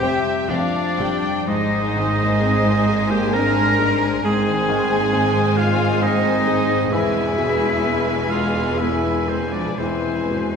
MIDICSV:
0, 0, Header, 1, 13, 480
1, 0, Start_track
1, 0, Tempo, 972447
1, 723, Time_signature, 3, 2, 24, 8
1, 723, Tempo, 933126
1, 1683, Tempo, 900901
1, 4083, Tempo, 940439
1, 4563, Tempo, 1008403
1, 5412, End_track
2, 0, Start_track
2, 0, Title_t, "Violin section"
2, 0, Program_c, 0, 48
2, 14, Note_on_c, 0, 79, 49
2, 53, Note_off_c, 0, 79, 0
2, 247, Note_on_c, 0, 79, 48
2, 287, Note_off_c, 0, 79, 0
2, 487, Note_on_c, 0, 79, 44
2, 527, Note_off_c, 0, 79, 0
2, 729, Note_on_c, 0, 80, 63
2, 2148, Note_off_c, 0, 80, 0
2, 2171, Note_on_c, 0, 80, 70
2, 3577, Note_off_c, 0, 80, 0
2, 3597, Note_on_c, 0, 80, 65
2, 5019, Note_off_c, 0, 80, 0
2, 5048, Note_on_c, 0, 80, 44
2, 5412, Note_off_c, 0, 80, 0
2, 5412, End_track
3, 0, Start_track
3, 0, Title_t, "Flute section"
3, 0, Program_c, 1, 73
3, 0, Note_on_c, 1, 79, 86
3, 115, Note_off_c, 1, 79, 0
3, 238, Note_on_c, 1, 74, 67
3, 721, Note_off_c, 1, 74, 0
3, 724, Note_on_c, 1, 75, 67
3, 1548, Note_off_c, 1, 75, 0
3, 1562, Note_on_c, 1, 79, 67
3, 1677, Note_on_c, 1, 82, 85
3, 1679, Note_off_c, 1, 79, 0
3, 2163, Note_off_c, 1, 82, 0
3, 2170, Note_on_c, 1, 80, 77
3, 2875, Note_on_c, 1, 77, 69
3, 2880, Note_off_c, 1, 80, 0
3, 3113, Note_off_c, 1, 77, 0
3, 3127, Note_on_c, 1, 75, 73
3, 3456, Note_off_c, 1, 75, 0
3, 3597, Note_on_c, 1, 76, 77
3, 4306, Note_off_c, 1, 76, 0
3, 4326, Note_on_c, 1, 77, 60
3, 4566, Note_off_c, 1, 77, 0
3, 4567, Note_on_c, 1, 76, 58
3, 4793, Note_on_c, 1, 72, 51
3, 4799, Note_off_c, 1, 76, 0
3, 4915, Note_off_c, 1, 72, 0
3, 4920, Note_on_c, 1, 74, 45
3, 5038, Note_on_c, 1, 72, 54
3, 5040, Note_off_c, 1, 74, 0
3, 5412, Note_off_c, 1, 72, 0
3, 5412, End_track
4, 0, Start_track
4, 0, Title_t, "Oboe"
4, 0, Program_c, 2, 68
4, 0, Note_on_c, 2, 79, 79
4, 243, Note_on_c, 2, 74, 68
4, 250, Note_off_c, 2, 79, 0
4, 723, Note_off_c, 2, 74, 0
4, 727, Note_on_c, 2, 75, 68
4, 1566, Note_on_c, 2, 79, 68
4, 1574, Note_off_c, 2, 75, 0
4, 1684, Note_on_c, 2, 82, 83
4, 1692, Note_off_c, 2, 79, 0
4, 2024, Note_off_c, 2, 82, 0
4, 2174, Note_on_c, 2, 80, 78
4, 2874, Note_on_c, 2, 77, 75
4, 2882, Note_off_c, 2, 80, 0
4, 3118, Note_on_c, 2, 75, 83
4, 3126, Note_off_c, 2, 77, 0
4, 3595, Note_off_c, 2, 75, 0
4, 3598, Note_on_c, 2, 76, 83
4, 4319, Note_on_c, 2, 77, 67
4, 4327, Note_off_c, 2, 76, 0
4, 4564, Note_on_c, 2, 76, 60
4, 4571, Note_off_c, 2, 77, 0
4, 4804, Note_on_c, 2, 72, 51
4, 4811, Note_off_c, 2, 76, 0
4, 4917, Note_on_c, 2, 74, 48
4, 4924, Note_off_c, 2, 72, 0
4, 5041, Note_on_c, 2, 72, 50
4, 5048, Note_off_c, 2, 74, 0
4, 5381, Note_off_c, 2, 72, 0
4, 5412, End_track
5, 0, Start_track
5, 0, Title_t, "Violin section"
5, 0, Program_c, 3, 48
5, 15, Note_on_c, 3, 76, 58
5, 247, Note_off_c, 3, 76, 0
5, 252, Note_on_c, 3, 77, 58
5, 489, Note_off_c, 3, 77, 0
5, 491, Note_on_c, 3, 79, 56
5, 726, Note_off_c, 3, 79, 0
5, 736, Note_on_c, 3, 72, 66
5, 2151, Note_off_c, 3, 72, 0
5, 2165, Note_on_c, 3, 72, 68
5, 3574, Note_off_c, 3, 72, 0
5, 3594, Note_on_c, 3, 71, 62
5, 5018, Note_off_c, 3, 71, 0
5, 5039, Note_on_c, 3, 71, 43
5, 5412, Note_off_c, 3, 71, 0
5, 5412, End_track
6, 0, Start_track
6, 0, Title_t, "Cello"
6, 0, Program_c, 4, 42
6, 0, Note_on_c, 4, 67, 100
6, 245, Note_on_c, 4, 62, 87
6, 253, Note_off_c, 4, 67, 0
6, 719, Note_on_c, 4, 63, 81
6, 727, Note_off_c, 4, 62, 0
6, 1567, Note_on_c, 4, 67, 77
6, 1575, Note_off_c, 4, 63, 0
6, 1684, Note_off_c, 4, 67, 0
6, 1687, Note_on_c, 4, 70, 116
6, 2168, Note_on_c, 4, 68, 88
6, 2176, Note_off_c, 4, 70, 0
6, 2879, Note_off_c, 4, 68, 0
6, 2883, Note_on_c, 4, 65, 85
6, 3118, Note_on_c, 4, 63, 91
6, 3126, Note_off_c, 4, 65, 0
6, 3598, Note_off_c, 4, 63, 0
6, 3600, Note_on_c, 4, 64, 92
6, 4326, Note_on_c, 4, 65, 69
6, 4334, Note_off_c, 4, 64, 0
6, 4565, Note_on_c, 4, 64, 75
6, 4572, Note_off_c, 4, 65, 0
6, 4800, Note_on_c, 4, 60, 59
6, 4807, Note_off_c, 4, 64, 0
6, 4930, Note_on_c, 4, 62, 55
6, 4937, Note_off_c, 4, 60, 0
6, 5047, Note_on_c, 4, 60, 63
6, 5054, Note_off_c, 4, 62, 0
6, 5412, Note_off_c, 4, 60, 0
6, 5412, End_track
7, 0, Start_track
7, 0, Title_t, "Clarinet"
7, 0, Program_c, 5, 71
7, 0, Note_on_c, 5, 67, 87
7, 243, Note_on_c, 5, 62, 66
7, 250, Note_off_c, 5, 67, 0
7, 723, Note_off_c, 5, 62, 0
7, 731, Note_on_c, 5, 63, 68
7, 1567, Note_on_c, 5, 67, 72
7, 1575, Note_off_c, 5, 63, 0
7, 1681, Note_on_c, 5, 70, 84
7, 1689, Note_off_c, 5, 67, 0
7, 2022, Note_off_c, 5, 70, 0
7, 2163, Note_on_c, 5, 68, 77
7, 2875, Note_on_c, 5, 65, 76
7, 2883, Note_off_c, 5, 68, 0
7, 3110, Note_on_c, 5, 63, 77
7, 3118, Note_off_c, 5, 65, 0
7, 3586, Note_off_c, 5, 63, 0
7, 3589, Note_on_c, 5, 64, 82
7, 4322, Note_on_c, 5, 65, 63
7, 4329, Note_off_c, 5, 64, 0
7, 4563, Note_on_c, 5, 64, 57
7, 4570, Note_off_c, 5, 65, 0
7, 4798, Note_on_c, 5, 60, 49
7, 4805, Note_off_c, 5, 64, 0
7, 4918, Note_on_c, 5, 62, 46
7, 4925, Note_off_c, 5, 60, 0
7, 5036, Note_off_c, 5, 62, 0
7, 5039, Note_on_c, 5, 60, 58
7, 5373, Note_off_c, 5, 60, 0
7, 5412, End_track
8, 0, Start_track
8, 0, Title_t, "Felt piano"
8, 0, Program_c, 6, 0
8, 0, Control_c, 6, 64, 127
8, 0, Note_on_c, 6, 41, 57
8, 0, Note_on_c, 6, 48, 45
8, 0, Note_on_c, 6, 55, 50
8, 0, Note_on_c, 6, 60, 42
8, 14, Note_on_c, 6, 72, 42
8, 150, Note_off_c, 6, 60, 0
8, 250, Note_on_c, 6, 60, 47
8, 392, Note_off_c, 6, 72, 0
8, 493, Note_off_c, 6, 55, 0
8, 493, Note_on_c, 6, 55, 36
8, 632, Note_off_c, 6, 60, 0
8, 707, Note_off_c, 6, 41, 0
8, 727, Note_off_c, 6, 55, 0
8, 727, Note_on_c, 6, 44, 57
8, 733, Control_c, 6, 64, 0
8, 738, Note_off_c, 6, 48, 0
8, 808, Control_c, 6, 64, 127
8, 980, Note_on_c, 6, 51, 44
8, 1214, Note_on_c, 6, 60, 46
8, 1357, Note_off_c, 6, 51, 0
8, 1455, Note_on_c, 6, 68, 46
8, 1591, Note_off_c, 6, 60, 0
8, 1684, Note_on_c, 6, 60, 54
8, 1834, Note_off_c, 6, 68, 0
8, 1926, Note_on_c, 6, 56, 45
8, 2071, Note_off_c, 6, 60, 0
8, 2147, Note_off_c, 6, 44, 0
8, 2173, Note_on_c, 6, 44, 57
8, 2174, Control_c, 6, 64, 0
8, 2258, Control_c, 6, 64, 127
8, 2309, Note_off_c, 6, 56, 0
8, 2404, Note_on_c, 6, 51, 51
8, 2640, Note_on_c, 6, 60, 51
8, 2784, Note_off_c, 6, 51, 0
8, 2877, Note_on_c, 6, 68, 51
8, 3019, Note_off_c, 6, 60, 0
8, 3118, Note_on_c, 6, 60, 58
8, 3257, Note_off_c, 6, 68, 0
8, 3357, Note_on_c, 6, 56, 49
8, 3500, Note_off_c, 6, 60, 0
8, 3578, Note_off_c, 6, 44, 0
8, 3596, Note_on_c, 6, 40, 55
8, 3598, Note_off_c, 6, 56, 0
8, 3604, Control_c, 6, 64, 0
8, 3690, Control_c, 6, 64, 127
8, 3838, Note_on_c, 6, 47, 46
8, 4087, Note_on_c, 6, 59, 42
8, 4224, Note_off_c, 6, 47, 0
8, 4327, Note_on_c, 6, 68, 43
8, 4467, Note_off_c, 6, 59, 0
8, 4572, Note_on_c, 6, 59, 44
8, 4706, Note_off_c, 6, 68, 0
8, 4808, Note_on_c, 6, 56, 35
8, 4945, Note_off_c, 6, 59, 0
8, 5019, Note_off_c, 6, 40, 0
8, 5046, Control_c, 6, 64, 0
8, 5053, Note_on_c, 6, 52, 40
8, 5137, Control_c, 6, 64, 127
8, 5190, Note_off_c, 6, 56, 0
8, 5294, Note_on_c, 6, 47, 32
8, 5412, Note_off_c, 6, 47, 0
8, 5412, Note_off_c, 6, 52, 0
8, 5412, End_track
9, 0, Start_track
9, 0, Title_t, "French horn section"
9, 0, Program_c, 7, 60
9, 0, Note_on_c, 7, 48, 86
9, 226, Note_off_c, 7, 48, 0
9, 242, Note_on_c, 7, 53, 64
9, 641, Note_off_c, 7, 53, 0
9, 725, Note_on_c, 7, 56, 67
9, 1549, Note_off_c, 7, 56, 0
9, 1566, Note_on_c, 7, 58, 69
9, 1684, Note_off_c, 7, 58, 0
9, 1694, Note_on_c, 7, 62, 83
9, 2171, Note_off_c, 7, 62, 0
9, 2175, Note_on_c, 7, 60, 78
9, 2868, Note_off_c, 7, 60, 0
9, 2879, Note_on_c, 7, 56, 78
9, 3115, Note_off_c, 7, 56, 0
9, 3121, Note_on_c, 7, 60, 74
9, 3590, Note_off_c, 7, 60, 0
9, 3607, Note_on_c, 7, 68, 81
9, 4311, Note_off_c, 7, 68, 0
9, 4323, Note_on_c, 7, 56, 62
9, 4564, Note_off_c, 7, 56, 0
9, 4575, Note_on_c, 7, 68, 52
9, 4800, Note_on_c, 7, 52, 48
9, 4803, Note_off_c, 7, 68, 0
9, 4915, Note_on_c, 7, 53, 49
9, 4918, Note_off_c, 7, 52, 0
9, 5037, Note_off_c, 7, 53, 0
9, 5037, Note_on_c, 7, 52, 56
9, 5412, Note_off_c, 7, 52, 0
9, 5412, End_track
10, 0, Start_track
10, 0, Title_t, "Harp"
10, 0, Program_c, 8, 46
10, 0, Note_on_c, 8, 41, 57
10, 0, Note_on_c, 8, 48, 45
10, 0, Note_on_c, 8, 55, 41
10, 13, Note_on_c, 8, 60, 42
10, 121, Note_off_c, 8, 55, 0
10, 127, Note_on_c, 8, 55, 40
10, 246, Note_on_c, 8, 57, 38
10, 362, Note_off_c, 8, 55, 0
10, 368, Note_on_c, 8, 55, 38
10, 449, Note_off_c, 8, 57, 0
10, 488, Note_on_c, 8, 53, 37
10, 603, Note_off_c, 8, 55, 0
10, 609, Note_on_c, 8, 55, 39
10, 689, Note_off_c, 8, 53, 0
10, 725, Note_on_c, 8, 44, 59
10, 744, Note_off_c, 8, 41, 0
10, 744, Note_off_c, 8, 55, 0
10, 745, Note_off_c, 8, 48, 0
10, 850, Note_on_c, 8, 56, 50
10, 965, Note_off_c, 8, 60, 0
10, 971, Note_on_c, 8, 60, 49
10, 1093, Note_on_c, 8, 58, 39
10, 1208, Note_off_c, 8, 60, 0
10, 1215, Note_on_c, 8, 60, 51
10, 1293, Note_off_c, 8, 58, 0
10, 1325, Note_off_c, 8, 56, 0
10, 1331, Note_on_c, 8, 56, 48
10, 1447, Note_off_c, 8, 60, 0
10, 1453, Note_on_c, 8, 60, 44
10, 1565, Note_off_c, 8, 56, 0
10, 1571, Note_on_c, 8, 56, 45
10, 1687, Note_on_c, 8, 58, 43
10, 1804, Note_off_c, 8, 56, 0
10, 1810, Note_on_c, 8, 56, 48
10, 1892, Note_off_c, 8, 58, 0
10, 1931, Note_on_c, 8, 55, 43
10, 2046, Note_off_c, 8, 56, 0
10, 2053, Note_on_c, 8, 56, 45
10, 2132, Note_off_c, 8, 55, 0
10, 2159, Note_off_c, 8, 44, 0
10, 2165, Note_on_c, 8, 44, 63
10, 2286, Note_on_c, 8, 51, 52
10, 2396, Note_off_c, 8, 60, 0
10, 2402, Note_on_c, 8, 60, 50
10, 2524, Note_on_c, 8, 58, 45
10, 2637, Note_off_c, 8, 60, 0
10, 2644, Note_on_c, 8, 60, 56
10, 2725, Note_off_c, 8, 58, 0
10, 2760, Note_off_c, 8, 56, 0
10, 2767, Note_on_c, 8, 56, 52
10, 2876, Note_off_c, 8, 60, 0
10, 2882, Note_on_c, 8, 60, 49
10, 2997, Note_off_c, 8, 56, 0
10, 3003, Note_on_c, 8, 56, 48
10, 3121, Note_on_c, 8, 58, 45
10, 3234, Note_off_c, 8, 56, 0
10, 3240, Note_on_c, 8, 56, 47
10, 3321, Note_off_c, 8, 58, 0
10, 3360, Note_on_c, 8, 55, 42
10, 3478, Note_off_c, 8, 56, 0
10, 3484, Note_on_c, 8, 56, 51
10, 3562, Note_off_c, 8, 55, 0
10, 3615, Note_off_c, 8, 44, 0
10, 3616, Note_off_c, 8, 51, 0
10, 3618, Note_off_c, 8, 60, 0
10, 3717, Note_off_c, 8, 56, 0
10, 3723, Note_on_c, 8, 56, 46
10, 3967, Note_on_c, 8, 57, 41
10, 4168, Note_off_c, 8, 57, 0
10, 4202, Note_off_c, 8, 56, 0
10, 4208, Note_on_c, 8, 56, 44
10, 4436, Note_off_c, 8, 56, 0
10, 4442, Note_on_c, 8, 56, 40
10, 4567, Note_on_c, 8, 57, 37
10, 4676, Note_off_c, 8, 56, 0
10, 4681, Note_on_c, 8, 56, 35
10, 4763, Note_off_c, 8, 57, 0
10, 4798, Note_on_c, 8, 65, 32
10, 4912, Note_off_c, 8, 56, 0
10, 4917, Note_on_c, 8, 56, 34
10, 5002, Note_off_c, 8, 65, 0
10, 5041, Note_on_c, 8, 52, 42
10, 5412, Note_off_c, 8, 52, 0
10, 5412, Note_off_c, 8, 56, 0
10, 5412, End_track
11, 0, Start_track
11, 0, Title_t, "Viola section"
11, 0, Program_c, 10, 48
11, 10, Note_on_c, 10, 60, 49
11, 50, Note_off_c, 10, 60, 0
11, 239, Note_on_c, 10, 60, 46
11, 278, Note_off_c, 10, 60, 0
11, 482, Note_on_c, 10, 60, 45
11, 522, Note_off_c, 10, 60, 0
11, 724, Note_on_c, 10, 56, 62
11, 2146, Note_off_c, 10, 56, 0
11, 2169, Note_on_c, 10, 56, 68
11, 3576, Note_off_c, 10, 56, 0
11, 3599, Note_on_c, 10, 56, 66
11, 5020, Note_off_c, 10, 56, 0
11, 5042, Note_on_c, 10, 56, 44
11, 5412, Note_off_c, 10, 56, 0
11, 5412, End_track
12, 0, Start_track
12, 0, Title_t, "Cello section"
12, 0, Program_c, 11, 48
12, 4, Note_on_c, 11, 41, 50
12, 43, Note_off_c, 11, 41, 0
12, 244, Note_on_c, 11, 41, 51
12, 284, Note_off_c, 11, 41, 0
12, 483, Note_on_c, 11, 41, 54
12, 522, Note_off_c, 11, 41, 0
12, 725, Note_on_c, 11, 44, 66
12, 2146, Note_off_c, 11, 44, 0
12, 2162, Note_on_c, 11, 44, 71
12, 3573, Note_off_c, 11, 44, 0
12, 3596, Note_on_c, 11, 40, 71
12, 5019, Note_off_c, 11, 40, 0
12, 5039, Note_on_c, 11, 40, 48
12, 5412, Note_off_c, 11, 40, 0
12, 5412, End_track
13, 0, Start_track
13, 0, Title_t, "Double bass section"
13, 0, Program_c, 12, 48
13, 9, Note_on_c, 12, 29, 49
13, 49, Note_off_c, 12, 29, 0
13, 248, Note_on_c, 12, 29, 53
13, 288, Note_off_c, 12, 29, 0
13, 493, Note_on_c, 12, 29, 45
13, 532, Note_off_c, 12, 29, 0
13, 731, Note_on_c, 12, 32, 69
13, 2149, Note_off_c, 12, 32, 0
13, 2164, Note_on_c, 12, 32, 72
13, 3573, Note_off_c, 12, 32, 0
13, 3595, Note_on_c, 12, 28, 70
13, 5019, Note_off_c, 12, 28, 0
13, 5034, Note_on_c, 12, 28, 48
13, 5412, Note_off_c, 12, 28, 0
13, 5412, End_track
0, 0, End_of_file